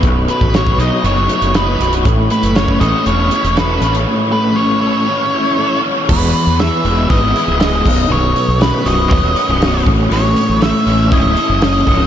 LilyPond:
<<
  \new Staff \with { instrumentName = "Lead electric guitar" } { \time 4/4 \key a \lydian \tempo 4 = 119 r8 b'8 cis''8 dis''8 cis''4 b'8. r16 | r8 b'8 cis''8 dis''8 cis''4 b'8. r16 | r8 b'8 cis''8 cis''2 r8 | b'4 e''4 dis''4 dis''4 |
cis''4 b'8 dis''2 r8 | cis''4 e''4 dis''4 dis''4 | }
  \new Staff \with { instrumentName = "Overdriven electric guitar" } { \time 4/4 \key a \lydian b,,8 b,8 fis8 dis'8 fis8 a8 dis'8 fis8 | a,8 a8 cis'8 a'8 cis'8 e'8 a'8 cis'8 | a,8 a8 cis'8 a'8 cis'8 e'8 a'8 cis'8 | e,4 e8 gis8 b8 e'8 gis8 b,,8 |
b,,4 fis,8 b,8 fis8 cis'8 b,8 a,8 | a,4 a8 cis'8 e'8 a'8 cis'8 a'8 | }
  \new Staff \with { instrumentName = "Fingered electric bass" } { \clef bass \time 4/4 \key a \lydian b,,,8 r16 a,,8. b,,16 r16 fis,,8 r16 fis,,8. b,,,8 | a,,8 r16 fis,,8. a,,16 r16 e,,8 r16 e,,8. a,,8 | r1 | e,,8 r16 e,8 r16 e,,8 gis,,8 r16 cis,,8. b,,,8 |
b,,,8 r16 b,,8 r16 b,,,8 dis,,8 r16 b,,,8. a,,8 | a,,8 r16 a,,8 r16 a,,8 cis,,8 r16 fis,,8. cis,,8 | }
  \new DrumStaff \with { instrumentName = "Drums" } \drummode { \time 4/4 <hh bd>8 hh16 bd16 <hh sn>16 bd16 <hh sn>8 hh8 hh16 hh16 <hh sn>8 hh16 hh16 | <hh bd>8 hh16 hh16 <hh sn>16 bd16 <hh bd>8 hh8 hh16 hh16 <hh sn>8 hh16 hh16 | r4 r4 r4 r4 | <cymc bd>8 hho8 <hho sn>8 hho8 <hho bd>8 hho8 <hho sn>8 <cymc bd sn>8 |
r8 hho8 <hho sn>8 hho8 <hho bd>8 hho8 <hho sn>8 <hho bd>8 | hho8 hho8 <hho sn>8 hho8 <hho bd>8 hho8 <hho sn>8 <hho bd>8 | }
>>